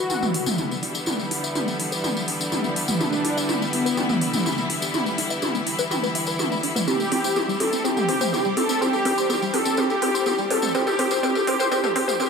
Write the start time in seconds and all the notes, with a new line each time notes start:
Already playing: E1 D3 E3 G3 B3 E4 F#4
0.10 G5, mid tom, tambourine
0.22 B4, mid tom, tambourine
0.34 E1 E4, open hi-hat
0.46 D4, mid tom, tambourine
0.58 D4, mid tom, tambourine
0.71 B1 B3, tambourine
0.83 E4, open hi-hat
0.95 G4, tambourine
1.06 B1 E4, mid tom, tambourine
1.19 B4, tambourine
1.31 E4, open hi-hat
1.43 E1 E5, tambourine
1.55 D4, mid tom, tambourine
1.68 B3, tambourine
1.80 E1 E4, open hi-hat
1.92 B4, tambourine
2.04 G5, mid tom, tambourine
2.16 B4, tambourine
2.28 A1 E4, open hi-hat
2.40 D4, tambourine
2.52 D4, mid tom, tambourine
2.64 E1 B3, tambourine
2.76 E4, open hi-hat
2.88 G4, mid tom, tambourine
3.00 D4 E4, mid tom, tambourine
3.12 B4, tambourine
3.25 E4, open hi-hat
3.37 E1 E5, tambourine
3.49 D4, mid tom, tambourine
3.61 B3, tambourine
3.73 E1 B3 E4, open hi-hat
3.85 B4, tambourine
3.97 G5, mid tom, tambourine
4.09 B4, mid tom, tambourine
4.21 E4, open hi-hat
4.33 D4, mid tom, tambourine
4.46 D4, mid tom, tambourine
4.58 B1 B3, tambourine
4.70 E4, open hi-hat
4.82 G4, tambourine
4.94 B1 E4, mid tom, tambourine
5.06 B4, tambourine
5.18 E4, open hi-hat
5.30 E1 E5, tambourine
5.42 D4, mid tom, tambourine
5.55 B3, tambourine
5.67 E4, open hi-hat
5.79 B4, tambourine
5.91 G5, mid tom, tambourine
6.03 B4, tambourine
6.15 E5, open hi-hat
6.27 B4, tambourine
6.39 E4, mid tom, tambourine
6.52 E1 E5, tambourine
6.63 D4, open hi-hat
6.76 B4, mid tom, tambourine
6.87 G3 C4 G4, mid tom, tambourine
7.00 A4, tambourine
7.12 C4, open hi-hat, mid tom
7.24 C5, tambourine
7.36 B3, mid tom, tambourine
7.48 G3, tambourine
7.60 E1 C4 A4, open hi-hat, mid tom
7.72 C4, tambourine
7.84 C4 G4, mid tom, tambourine
7.97 A4, mid tom, tambourine
8.09 C4, open hi-hat, mid tom
8.21 C5, mid tom, tambourine
8.33 B3, mid tom, tambourine
8.45 B1 G3, tambourine
8.57 C4 A4, open hi-hat, mid tom
8.69 C4, tambourine
8.81 B1 C4 G4, mid tom, tambourine
8.93 A4, tambourine
9.05 C4, open hi-hat, mid tom
9.18 C5, tambourine
9.29 B3, mid tom, tambourine
9.42 G3, tambourine
9.54 C4 A4, open hi-hat, mid tom
9.65 C4, tambourine
9.77 C4 G4, mid tom, tambourine
9.90 A4, tambourine
10.02 A1 C4, open hi-hat, mid tom
10.14 C5, tambourine
10.26 B3, mid tom, tambourine
10.38 G3, tambourine
10.50 C4 A4, open hi-hat, mid tom
10.62 C4, mid tom, tambourine
10.75 C4 G4, mid tom, tambourine
10.87 A4, mid tom, tambourine
10.99 C4, open hi-hat, mid tom
11.11 C5, mid tom, tambourine
11.23 C4 G4, mid tom, tambourine
11.35 A4, mid tom, tambourine
11.47 C4, open hi-hat, mid tom
11.60 C5, mid tom, tambourine
11.71 C4 G4, mid tom, tambourine
11.84 A4, mid tom, tambourine
11.96 C4, open hi-hat, mid tom
12.08 C5, mid tom, tambourine
12.20 C4 G4, mid tom, tambourine